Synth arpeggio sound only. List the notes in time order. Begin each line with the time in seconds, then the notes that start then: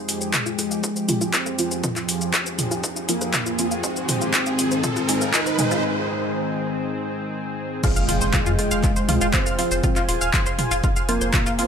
0.09 F4
0.21 C5
0.34 F4
0.46 F4
0.59 F4
0.71 F5
0.84 F4
0.96 C5
1.09 F4
1.21 F4
1.34 F4
1.46 F5
1.59 F4
1.71 C5
1.84 F4
1.96 F4
2.09 F4
2.21 F5
2.34 F4
2.46 C5
2.59 F4
2.71 F4
2.84 F4
2.96 F5
3.09 F4
3.21 C5
3.34 F4
3.46 F4
3.59 F4
3.71 F5
3.84 F4
3.96 C5
4.09 F4
4.21 F4
4.34 F4
4.46 F5
4.59 F4
4.71 C5
4.84 F4
4.96 F4
5.09 F4
5.21 F5
5.34 F4
5.46 C5
5.59 F4
5.71 F4
7.84 F4 F5
7.96 F5 F6
8.09 F4 F5
8.21 C5 C6
8.34 F4 F5
8.46 F4 F5
8.59 F4 F5
8.71 F5 F6
8.84 F4 F5
8.96 C5 C6
9.09 F4 F5
9.21 F4 F5
9.34 F4 F5
9.46 F5 F6
9.59 F4 F5
9.71 C5 C6
9.84 F4 F5
9.96 F4 F5
10.09 F4 F5
10.21 F5 F6
10.34 F4 F5
10.46 C5 C6
10.59 F4 F5
10.71 F4 F5
10.84 F4 F5
10.96 F5 F6
11.09 F4 F5
11.21 C5 C6
11.34 F4 F5
11.46 F4 F5
11.59 F4 F5